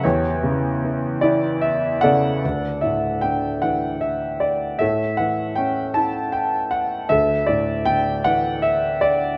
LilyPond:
<<
  \new Staff \with { instrumentName = "Grand piano" } { \time 6/8 \key d \major \tempo 4. = 51 << { cis''4. d''8 e''8 fis''8~ | fis''8 e''8 g''8 fis''8 e''8 d''8 | e''8 fis''8 g''8 a''8 g''8 fis''8 | e''8 d''8 g''8 fis''8 e''8 d''8 | } \\ { g'2 r8 <a' d''>8~ | <a' d''>4 r2 | <a' cis''>4. r4. | a'4. r4. | } >> }
  \new Staff \with { instrumentName = "Grand piano" } { \clef bass \time 6/8 \key d \major e,8 cis8 e8 e'4 cis8 | d,8 a,8 d8 e4. | a,8 e8 cis'8 e'4. | d,8 a,8 d8 e4. | }
>>